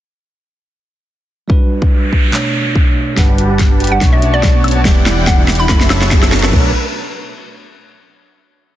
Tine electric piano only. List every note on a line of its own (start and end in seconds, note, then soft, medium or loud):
1.48 2.29 G3 medium
1.48 2.29 D4 medium
1.48 2.30 F#4 medium
1.52 2.31 B4 medium
2.32 3.13 B2 medium
2.32 3.13 A3 medium
2.32 3.14 D4 medium
2.36 3.15 C#5 medium
3.15 3.96 G3 medium
3.15 3.97 D4 medium
3.15 3.99 B4 medium
3.15 3.98 F#5 medium
3.99 4.80 B2 medium
3.99 4.81 A3 medium
3.99 4.82 D4 medium
3.99 4.82 C#6 medium
4.83 5.64 E3 medium
4.83 5.65 B3 medium
4.83 5.66 G4 medium
4.87 5.66 D5 medium
5.67 6.48 F#3 medium
5.67 6.49 C#4 medium
5.67 6.50 A4 medium
5.71 6.50 E5 medium
6.50 6.67 B2 medium
6.50 6.68 A3 medium
6.54 6.70 D4 medium
6.54 6.71 C#5 medium